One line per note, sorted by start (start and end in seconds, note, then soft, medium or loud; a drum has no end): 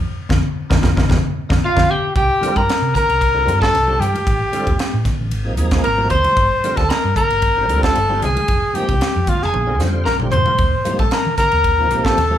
0.29 0.41 F2 medium
0.29 0.39 D#4 medium
0.29 0.39 F4 medium
0.29 0.39 A#4 medium
0.29 kick medium
0.29 snare medium
0.29 low conga medium
0.70 0.80 F2 medium
0.70 0.78 D#4 loud
0.70 0.78 F4 medium
0.70 0.78 A#4 loud
0.70 kick medium
0.70 snare medium
0.70 low conga medium
0.82 0.93 F2 medium
0.82 0.92 D#4 medium
0.82 0.92 F4 medium
0.82 0.91 A#4 medium
0.82 kick medium
0.82 snare medium
0.82 low conga medium
0.97 1.06 F2 medium
0.97 1.05 D#4 medium
0.97 1.05 F4 medium
0.97 1.05 A#4 medium
0.97 kick medium
0.97 snare medium
0.97 low conga medium
1.08 1.20 F2 medium
1.08 1.18 D#4 medium
1.08 1.18 F4 medium
1.08 1.18 A#4 medium
1.08 kick medium
1.08 snare medium
1.08 low conga medium
1.49 1.60 F2 medium
1.49 1.57 D#4 medium
1.49 1.57 F4 medium
1.49 1.57 A#4 medium
1.49 kick medium
1.49 snare medium
1.49 low conga medium
1.65 1.92 F4 medium
1.65 1.91 F5 medium
1.76 1.86 F2 medium
1.76 1.84 D#4 medium
1.76 1.84 F4 medium
1.76 1.84 A#4 medium
1.76 kick medium
1.76 snare medium
1.76 low conga medium
1.90 2.15 G4 medium
1.90 2.16 G5 medium
2.16 2.29 C2 medium
2.16 2.58 G4 medium
2.16 2.57 G5 medium
2.16 kick medium
2.16 ride medium
2.41 2.62 D3 medium
2.41 2.62 G3 medium
2.41 2.62 C4 medium
2.41 2.61 F4 medium
2.41 2.62 A#4 medium
2.41 muted fingered electric bass stroke soft
2.41 hi-hat pedal medium
2.41 ride medium
2.41 high conga medium
2.56 2.67 G2 medium
2.56 2.95 A#4 medium
2.56 2.94 A#5 medium
2.56 kick medium
2.56 ride soft
2.68 2.74 F4 soft
2.68 2.75 A4 soft
2.68 muted fingered electric bass stroke soft
2.68 snare loud
2.68 ride medium
2.82 2.94 C3 medium
2.95 3.58 A#4 loud
2.95 3.57 A#5 medium
2.95 kick medium
2.95 snare soft
2.95 hi-hat pedal medium
2.95 ride medium
2.95 low conga medium
3.09 3.48 C2 medium
3.09 ride soft
3.21 kick medium
3.21 ride medium
3.34 3.44 D3 medium
3.34 3.44 G3 medium
3.34 3.44 C4 medium
3.34 3.44 F4 medium
3.34 3.44 A4 medium
3.45 3.72 G2 medium
3.45 3.77 D3 medium
3.45 3.76 G3 medium
3.45 3.77 C4 medium
3.45 3.77 F4 medium
3.45 3.77 A#4 medium
3.45 hi-hat pedal medium
3.45 ride medium
3.45 high conga medium
3.62 4.02 A4 medium
3.62 4.01 A5 medium
3.62 kick medium
3.62 snare medium
3.74 3.99 C2 medium
3.74 snare soft
3.74 ride medium
3.86 4.07 D3 medium
3.86 4.07 G3 medium
3.86 4.07 C4 medium
3.86 4.07 F4 medium
3.86 4.07 G4 medium
3.86 high conga medium
4.00 4.13 G2 medium
4.00 5.06 G4 medium
4.00 5.06 G5 medium
4.00 hi-hat pedal medium
4.00 ride medium
4.00 low conga medium
4.13 4.19 F4 soft
4.13 4.19 A#4 soft
4.13 ride medium
4.13 high conga medium
4.27 4.40 A1 medium
4.27 kick loud
4.27 ride medium
4.52 4.73 D3 medium
4.52 4.73 G3 medium
4.52 4.73 C4 medium
4.52 4.73 F4 medium
4.52 4.73 A4 loud
4.52 muted fingered electric bass stroke soft
4.52 hi-hat pedal medium
4.52 ride medium
4.52 high conga medium
4.67 4.79 D#2 medium
4.67 kick medium
4.67 ride medium
4.78 4.85 F4 soft
4.78 4.85 G4 soft
4.78 muted fingered electric bass stroke soft
4.78 snare medium
4.78 ride medium
4.94 5.05 A2 medium
5.05 kick medium
5.05 snare soft
5.05 hi-hat pedal medium
5.05 ride medium
5.05 low conga medium
5.20 5.31 A1 medium
5.31 5.58 G#1 medium
5.31 ride medium
5.44 5.55 C3 medium
5.44 5.55 F3 medium
5.44 5.54 A#3 medium
5.44 5.55 D#4 medium
5.44 5.55 G#4 medium
5.57 5.83 D#2 medium
5.57 5.89 C3 loud
5.57 5.88 F3 medium
5.57 5.88 A#3 medium
5.57 5.88 D#4 medium
5.57 5.89 G#4 loud
5.57 hi-hat pedal medium
5.57 ride soft
5.57 high conga medium
5.71 kick medium
5.71 snare loud
5.71 ride medium
5.83 6.10 G#1 medium
5.83 6.09 A#4 loud
5.83 6.10 A#5 medium
5.83 ride medium
5.97 6.18 C3 medium
5.97 6.18 F3 medium
5.97 6.18 A#3 medium
5.97 6.18 D#4 medium
5.97 6.18 F#4 medium
5.97 high conga medium
6.10 6.24 D#2 medium
6.10 6.78 C5 medium
6.10 6.73 C6 medium
6.10 kick medium
6.10 hi-hat pedal medium
6.10 ride medium
6.10 low conga medium
6.24 6.31 D#4 soft
6.24 6.31 F#4 soft
6.24 ride medium
6.24 high conga medium
6.37 6.50 G1 medium
6.37 kick loud
6.37 ride medium
6.64 6.84 D3 medium
6.64 6.85 G3 medium
6.64 6.84 C4 medium
6.64 6.85 F4 medium
6.64 6.84 A#4 medium
6.64 muted fingered electric bass stroke soft
6.64 hi-hat pedal medium
6.64 ride soft
6.64 high conga medium
6.77 6.89 D2 medium
6.77 6.91 A4 medium
6.77 6.89 A5 medium
6.77 kick medium
6.77 snare soft
6.77 ride medium
6.89 6.97 F4 soft
6.89 7.16 A#4 medium
6.89 6.97 A#4 soft
6.89 7.16 A#5 medium
6.89 muted fingered electric bass stroke soft
6.89 snare loud
6.89 ride medium
7.04 7.16 G2 medium
7.16 7.79 A#4 loud
7.16 7.80 A#5 medium
7.16 kick medium
7.16 hi-hat pedal medium
7.16 ride soft
7.16 low conga medium
7.30 7.71 G1 medium
7.30 ride soft
7.42 kick medium
7.42 ride medium
7.57 7.66 D3 medium
7.57 7.66 G3 medium
7.57 7.66 C4 medium
7.57 7.66 F4 medium
7.57 7.67 C5 medium
7.69 7.95 D2 medium
7.69 8.00 D3 medium
7.69 8.00 G3 medium
7.69 8.00 C4 medium
7.69 8.00 F4 medium
7.69 8.00 A4 medium
7.69 hi-hat pedal medium
7.69 ride medium
7.69 high conga medium
7.83 8.24 A4 medium
7.83 8.21 A5 medium
7.83 kick medium
7.83 snare loud
7.95 8.21 G1 medium
7.95 ride medium
8.09 8.29 D3 medium
8.09 8.29 G3 medium
8.09 8.29 C4 medium
8.09 8.29 F4 medium
8.09 8.29 G4 medium
8.09 high conga medium
8.22 8.35 C2 medium
8.22 8.76 G#4 medium
8.22 8.77 G#5 medium
8.22 hi-hat pedal medium
8.22 ride medium
8.22 low conga medium
8.34 8.41 F4 soft
8.34 8.41 A#4 soft
8.34 ride medium
8.34 high conga medium
8.48 8.62 F1 medium
8.48 kick medium
8.48 ride medium
8.73 8.94 C3 medium
8.73 8.95 F3 medium
8.73 8.95 A#3 medium
8.73 8.95 D#4 medium
8.73 8.95 G4 medium
8.73 9.31 G4 medium
8.73 9.30 G5 medium
8.73 muted fingered electric bass stroke soft
8.73 hi-hat pedal medium
8.73 ride medium
8.73 high conga medium
8.89 9.00 C2 medium
8.89 kick medium
8.89 ride medium
9.00 9.07 D#4 soft
9.00 9.08 G4 soft
9.00 muted fingered electric bass stroke soft
9.00 snare medium
9.00 ride medium
9.16 9.27 F2 medium
9.27 9.44 F4 medium
9.27 9.45 F5 medium
9.27 kick medium
9.27 hi-hat pedal medium
9.27 ride medium
9.27 high conga medium
9.27 low conga medium
9.42 9.54 F1 medium
9.42 9.80 G#4 medium
9.42 9.81 G#5 medium
9.42 snare soft
9.54 9.80 A#1 medium
9.54 high tom medium
9.67 9.77 D3 medium
9.67 9.77 G3 medium
9.67 9.77 C4 medium
9.67 9.77 F4 medium
9.67 9.77 A#4 medium
9.78 10.05 F2 medium
9.78 10.09 D3 medium
9.78 10.09 G3 medium
9.78 10.10 C4 medium
9.78 10.10 F4 medium
9.78 10.10 C5 medium
9.78 snare medium
9.78 hi-hat pedal medium
9.78 high conga medium
10.05 10.31 A#1 medium
10.05 10.17 A#4 medium
10.05 10.13 A#5 medium
10.05 snare medium
10.19 10.39 D3 medium
10.19 10.39 G3 medium
10.19 10.39 C4 medium
10.19 10.39 F4 medium
10.19 10.39 G4 medium
10.19 mid tom medium
10.19 high conga medium
10.31 10.47 F2 medium
10.31 10.95 C5 medium
10.31 10.96 C6 medium
10.31 floor tom medium
10.31 hi-hat pedal medium
10.31 low conga medium
10.46 10.52 F4 soft
10.46 10.53 A#4 soft
10.46 floor tom medium
10.46 high conga medium
10.58 10.72 D#2 medium
10.58 kick loud
10.58 ride medium
10.84 11.05 C3 medium
10.84 11.05 F3 medium
10.84 11.05 A#3 medium
10.84 11.06 D#4 medium
10.84 11.05 G4 medium
10.84 muted fingered electric bass stroke soft
10.84 hi-hat pedal medium
10.84 ride medium
10.84 high conga medium
10.99 11.11 A#1 medium
10.99 11.13 A4 medium
10.99 11.14 A5 medium
10.99 kick medium
10.99 ride medium
11.11 11.18 D#4 soft
11.11 11.18 F4 soft
11.11 11.37 A#4 medium
11.11 11.39 A#5 medium
11.11 muted fingered electric bass stroke soft
11.11 snare loud
11.11 ride medium
11.26 11.38 D#3 medium
11.38 12.06 A#4 medium
11.38 12.02 A#5 medium
11.38 kick medium
11.38 snare soft
11.38 hi-hat pedal medium
11.38 ride medium
11.38 low conga medium
11.52 11.91 D#2 medium
11.52 ride soft
11.64 kick medium
11.64 ride medium
11.78 11.88 C3 medium
11.78 11.88 F3 medium
11.78 11.88 A#3 medium
11.78 11.88 D#4 medium
11.78 11.88 F4 medium
11.90 12.16 A#1 medium
11.90 12.21 C3 medium
11.90 12.21 F3 medium
11.90 12.21 A#3 medium
11.90 12.21 D#4 medium
11.90 12.21 G4 medium
11.90 hi-hat pedal medium
11.90 ride soft
11.90 high conga medium
12.04 12.38 A4 medium
12.04 12.38 A5 medium
12.04 kick medium
12.04 snare loud
12.18 12.38 D#2 medium
12.18 snare soft
12.18 ride medium
12.31 12.38 C3 medium
12.31 12.38 F3 medium
12.31 12.38 A#3 medium
12.31 12.38 D#4 medium
12.31 12.38 G4 medium
12.31 high conga medium